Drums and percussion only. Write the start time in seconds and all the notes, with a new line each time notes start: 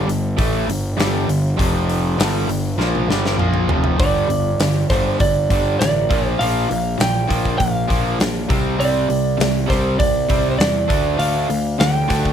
0.09 open hi-hat
0.38 kick, open hi-hat
0.70 open hi-hat
1.00 snare, open hi-hat
1.29 open hi-hat
1.59 kick, open hi-hat
1.89 open hi-hat
2.20 snare, open hi-hat
2.49 open hi-hat
2.80 snare
2.95 high tom
3.10 snare
3.26 snare
3.39 mid tom
3.54 mid tom
3.69 floor tom
3.84 floor tom
3.99 kick, open hi-hat
4.30 open hi-hat
4.60 snare, open hi-hat
4.90 kick, snare, open hi-hat
5.20 kick, open hi-hat
5.50 kick, open hi-hat
5.81 snare, open hi-hat
6.11 kick, open hi-hat
6.41 open hi-hat
6.71 open hi-hat
7.00 snare, open hi-hat
7.30 kick, open hi-hat
7.45 kick
7.60 kick, open hi-hat
7.90 kick, open hi-hat
8.20 snare, open hi-hat
8.50 kick, open hi-hat
8.81 open hi-hat
9.10 open hi-hat
9.40 snare, open hi-hat
9.70 kick, snare, open hi-hat
10.00 kick, open hi-hat
10.30 kick, open hi-hat
10.60 snare, open hi-hat
10.90 kick, open hi-hat
11.20 open hi-hat
11.50 open hi-hat
11.80 snare, open hi-hat
12.10 kick, snare, open hi-hat
12.25 kick